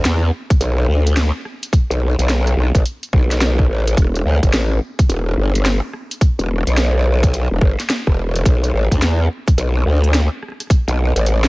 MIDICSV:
0, 0, Header, 1, 3, 480
1, 0, Start_track
1, 0, Key_signature, 1, "minor"
1, 0, Tempo, 560748
1, 1480, Time_signature, 4, 2, 24, 8
1, 9827, End_track
2, 0, Start_track
2, 0, Title_t, "Wobble bass"
2, 0, Program_c, 0, 39
2, 38, Note_on_c, 0, 40, 100
2, 265, Note_off_c, 0, 40, 0
2, 518, Note_on_c, 0, 35, 95
2, 745, Note_off_c, 0, 35, 0
2, 756, Note_on_c, 0, 38, 98
2, 1126, Note_off_c, 0, 38, 0
2, 1629, Note_on_c, 0, 35, 94
2, 1846, Note_off_c, 0, 35, 0
2, 1870, Note_on_c, 0, 35, 97
2, 2185, Note_off_c, 0, 35, 0
2, 2200, Note_on_c, 0, 35, 99
2, 2328, Note_off_c, 0, 35, 0
2, 2351, Note_on_c, 0, 33, 88
2, 2425, Note_off_c, 0, 33, 0
2, 2678, Note_on_c, 0, 35, 95
2, 3145, Note_off_c, 0, 35, 0
2, 3160, Note_on_c, 0, 33, 100
2, 3386, Note_off_c, 0, 33, 0
2, 3399, Note_on_c, 0, 28, 95
2, 3625, Note_off_c, 0, 28, 0
2, 3642, Note_on_c, 0, 38, 98
2, 3769, Note_off_c, 0, 38, 0
2, 3790, Note_on_c, 0, 31, 91
2, 3865, Note_off_c, 0, 31, 0
2, 3881, Note_on_c, 0, 33, 95
2, 4106, Note_off_c, 0, 33, 0
2, 4359, Note_on_c, 0, 28, 97
2, 4585, Note_off_c, 0, 28, 0
2, 4600, Note_on_c, 0, 31, 97
2, 4968, Note_off_c, 0, 31, 0
2, 5469, Note_on_c, 0, 28, 97
2, 5686, Note_off_c, 0, 28, 0
2, 5709, Note_on_c, 0, 35, 97
2, 6406, Note_off_c, 0, 35, 0
2, 6429, Note_on_c, 0, 28, 98
2, 6504, Note_off_c, 0, 28, 0
2, 6517, Note_on_c, 0, 31, 100
2, 6646, Note_off_c, 0, 31, 0
2, 6909, Note_on_c, 0, 28, 102
2, 7224, Note_off_c, 0, 28, 0
2, 7237, Note_on_c, 0, 35, 94
2, 7464, Note_off_c, 0, 35, 0
2, 7479, Note_on_c, 0, 33, 101
2, 7607, Note_off_c, 0, 33, 0
2, 7629, Note_on_c, 0, 38, 95
2, 7704, Note_off_c, 0, 38, 0
2, 7719, Note_on_c, 0, 40, 98
2, 7945, Note_off_c, 0, 40, 0
2, 8198, Note_on_c, 0, 35, 100
2, 8425, Note_off_c, 0, 35, 0
2, 8438, Note_on_c, 0, 38, 98
2, 8807, Note_off_c, 0, 38, 0
2, 9310, Note_on_c, 0, 35, 97
2, 9527, Note_off_c, 0, 35, 0
2, 9550, Note_on_c, 0, 33, 92
2, 9827, Note_off_c, 0, 33, 0
2, 9827, End_track
3, 0, Start_track
3, 0, Title_t, "Drums"
3, 42, Note_on_c, 9, 38, 119
3, 42, Note_on_c, 9, 42, 66
3, 128, Note_off_c, 9, 38, 0
3, 128, Note_off_c, 9, 42, 0
3, 195, Note_on_c, 9, 37, 40
3, 281, Note_off_c, 9, 37, 0
3, 430, Note_on_c, 9, 36, 107
3, 434, Note_on_c, 9, 42, 51
3, 516, Note_off_c, 9, 36, 0
3, 520, Note_off_c, 9, 42, 0
3, 520, Note_on_c, 9, 42, 68
3, 606, Note_off_c, 9, 42, 0
3, 913, Note_on_c, 9, 42, 50
3, 999, Note_off_c, 9, 42, 0
3, 1001, Note_on_c, 9, 38, 127
3, 1001, Note_on_c, 9, 42, 68
3, 1087, Note_off_c, 9, 38, 0
3, 1087, Note_off_c, 9, 42, 0
3, 1243, Note_on_c, 9, 37, 38
3, 1329, Note_off_c, 9, 37, 0
3, 1394, Note_on_c, 9, 42, 54
3, 1478, Note_on_c, 9, 36, 118
3, 1480, Note_off_c, 9, 42, 0
3, 1483, Note_on_c, 9, 42, 63
3, 1564, Note_off_c, 9, 36, 0
3, 1569, Note_off_c, 9, 42, 0
3, 1636, Note_on_c, 9, 42, 36
3, 1721, Note_off_c, 9, 42, 0
3, 1876, Note_on_c, 9, 42, 50
3, 1962, Note_off_c, 9, 42, 0
3, 1963, Note_on_c, 9, 38, 121
3, 1963, Note_on_c, 9, 42, 62
3, 2049, Note_off_c, 9, 38, 0
3, 2049, Note_off_c, 9, 42, 0
3, 2115, Note_on_c, 9, 37, 38
3, 2115, Note_on_c, 9, 42, 37
3, 2201, Note_off_c, 9, 37, 0
3, 2201, Note_off_c, 9, 42, 0
3, 2352, Note_on_c, 9, 36, 105
3, 2356, Note_on_c, 9, 42, 52
3, 2437, Note_off_c, 9, 36, 0
3, 2441, Note_off_c, 9, 42, 0
3, 2445, Note_on_c, 9, 42, 65
3, 2530, Note_off_c, 9, 42, 0
3, 2594, Note_on_c, 9, 42, 37
3, 2680, Note_off_c, 9, 42, 0
3, 2680, Note_on_c, 9, 36, 104
3, 2765, Note_off_c, 9, 36, 0
3, 2835, Note_on_c, 9, 38, 37
3, 2835, Note_on_c, 9, 42, 50
3, 2921, Note_off_c, 9, 38, 0
3, 2921, Note_off_c, 9, 42, 0
3, 2922, Note_on_c, 9, 38, 124
3, 2922, Note_on_c, 9, 42, 66
3, 3008, Note_off_c, 9, 38, 0
3, 3008, Note_off_c, 9, 42, 0
3, 3072, Note_on_c, 9, 36, 62
3, 3157, Note_off_c, 9, 36, 0
3, 3316, Note_on_c, 9, 42, 53
3, 3400, Note_on_c, 9, 36, 112
3, 3402, Note_off_c, 9, 42, 0
3, 3404, Note_on_c, 9, 42, 61
3, 3485, Note_off_c, 9, 36, 0
3, 3490, Note_off_c, 9, 42, 0
3, 3556, Note_on_c, 9, 42, 35
3, 3642, Note_off_c, 9, 42, 0
3, 3791, Note_on_c, 9, 36, 61
3, 3793, Note_on_c, 9, 42, 49
3, 3877, Note_off_c, 9, 36, 0
3, 3879, Note_off_c, 9, 42, 0
3, 3882, Note_on_c, 9, 38, 117
3, 3882, Note_on_c, 9, 42, 62
3, 3968, Note_off_c, 9, 38, 0
3, 3968, Note_off_c, 9, 42, 0
3, 4034, Note_on_c, 9, 37, 36
3, 4120, Note_off_c, 9, 37, 0
3, 4271, Note_on_c, 9, 36, 99
3, 4273, Note_on_c, 9, 42, 48
3, 4357, Note_off_c, 9, 36, 0
3, 4359, Note_off_c, 9, 42, 0
3, 4362, Note_on_c, 9, 42, 63
3, 4447, Note_off_c, 9, 42, 0
3, 4753, Note_on_c, 9, 42, 50
3, 4839, Note_off_c, 9, 42, 0
3, 4842, Note_on_c, 9, 38, 127
3, 4842, Note_on_c, 9, 42, 66
3, 4928, Note_off_c, 9, 38, 0
3, 4928, Note_off_c, 9, 42, 0
3, 5079, Note_on_c, 9, 37, 38
3, 5165, Note_off_c, 9, 37, 0
3, 5233, Note_on_c, 9, 42, 49
3, 5317, Note_on_c, 9, 36, 109
3, 5318, Note_off_c, 9, 42, 0
3, 5320, Note_on_c, 9, 42, 64
3, 5403, Note_off_c, 9, 36, 0
3, 5406, Note_off_c, 9, 42, 0
3, 5472, Note_on_c, 9, 42, 35
3, 5558, Note_off_c, 9, 42, 0
3, 5711, Note_on_c, 9, 42, 50
3, 5797, Note_off_c, 9, 42, 0
3, 5799, Note_on_c, 9, 38, 111
3, 5799, Note_on_c, 9, 42, 60
3, 5885, Note_off_c, 9, 38, 0
3, 5885, Note_off_c, 9, 42, 0
3, 5952, Note_on_c, 9, 37, 37
3, 5977, Note_off_c, 9, 37, 0
3, 5977, Note_on_c, 9, 37, 30
3, 5998, Note_off_c, 9, 37, 0
3, 5998, Note_on_c, 9, 37, 26
3, 6019, Note_off_c, 9, 37, 0
3, 6019, Note_on_c, 9, 37, 21
3, 6105, Note_off_c, 9, 37, 0
3, 6189, Note_on_c, 9, 36, 100
3, 6192, Note_on_c, 9, 42, 51
3, 6274, Note_off_c, 9, 36, 0
3, 6278, Note_off_c, 9, 42, 0
3, 6281, Note_on_c, 9, 42, 62
3, 6366, Note_off_c, 9, 42, 0
3, 6517, Note_on_c, 9, 36, 96
3, 6603, Note_off_c, 9, 36, 0
3, 6674, Note_on_c, 9, 38, 34
3, 6674, Note_on_c, 9, 42, 49
3, 6760, Note_off_c, 9, 38, 0
3, 6760, Note_off_c, 9, 42, 0
3, 6760, Note_on_c, 9, 38, 117
3, 6760, Note_on_c, 9, 42, 65
3, 6846, Note_off_c, 9, 38, 0
3, 6846, Note_off_c, 9, 42, 0
3, 6909, Note_on_c, 9, 36, 60
3, 6995, Note_off_c, 9, 36, 0
3, 7153, Note_on_c, 9, 42, 49
3, 7237, Note_on_c, 9, 36, 108
3, 7238, Note_off_c, 9, 42, 0
3, 7242, Note_on_c, 9, 42, 64
3, 7323, Note_off_c, 9, 36, 0
3, 7327, Note_off_c, 9, 42, 0
3, 7394, Note_on_c, 9, 42, 37
3, 7479, Note_off_c, 9, 42, 0
3, 7630, Note_on_c, 9, 36, 58
3, 7634, Note_on_c, 9, 42, 52
3, 7716, Note_off_c, 9, 36, 0
3, 7720, Note_off_c, 9, 42, 0
3, 7722, Note_on_c, 9, 38, 111
3, 7722, Note_on_c, 9, 42, 63
3, 7807, Note_off_c, 9, 38, 0
3, 7807, Note_off_c, 9, 42, 0
3, 7874, Note_on_c, 9, 37, 40
3, 7960, Note_off_c, 9, 37, 0
3, 8111, Note_on_c, 9, 36, 93
3, 8115, Note_on_c, 9, 42, 50
3, 8196, Note_off_c, 9, 36, 0
3, 8200, Note_off_c, 9, 42, 0
3, 8201, Note_on_c, 9, 42, 64
3, 8287, Note_off_c, 9, 42, 0
3, 8593, Note_on_c, 9, 42, 53
3, 8679, Note_off_c, 9, 42, 0
3, 8682, Note_on_c, 9, 38, 119
3, 8682, Note_on_c, 9, 42, 69
3, 8768, Note_off_c, 9, 38, 0
3, 8768, Note_off_c, 9, 42, 0
3, 8924, Note_on_c, 9, 37, 40
3, 8974, Note_off_c, 9, 37, 0
3, 8974, Note_on_c, 9, 37, 31
3, 9004, Note_off_c, 9, 37, 0
3, 9004, Note_on_c, 9, 37, 27
3, 9075, Note_off_c, 9, 37, 0
3, 9075, Note_on_c, 9, 37, 22
3, 9075, Note_on_c, 9, 42, 50
3, 9083, Note_off_c, 9, 37, 0
3, 9083, Note_on_c, 9, 37, 18
3, 9134, Note_off_c, 9, 37, 0
3, 9134, Note_on_c, 9, 37, 15
3, 9159, Note_on_c, 9, 36, 112
3, 9161, Note_off_c, 9, 42, 0
3, 9164, Note_off_c, 9, 37, 0
3, 9164, Note_on_c, 9, 37, 40
3, 9164, Note_on_c, 9, 42, 67
3, 9245, Note_off_c, 9, 36, 0
3, 9249, Note_off_c, 9, 37, 0
3, 9249, Note_off_c, 9, 42, 0
3, 9316, Note_on_c, 9, 42, 38
3, 9401, Note_off_c, 9, 42, 0
3, 9554, Note_on_c, 9, 42, 53
3, 9640, Note_off_c, 9, 42, 0
3, 9642, Note_on_c, 9, 42, 64
3, 9727, Note_off_c, 9, 42, 0
3, 9794, Note_on_c, 9, 37, 43
3, 9794, Note_on_c, 9, 38, 115
3, 9794, Note_on_c, 9, 42, 37
3, 9827, Note_off_c, 9, 37, 0
3, 9827, Note_off_c, 9, 38, 0
3, 9827, Note_off_c, 9, 42, 0
3, 9827, End_track
0, 0, End_of_file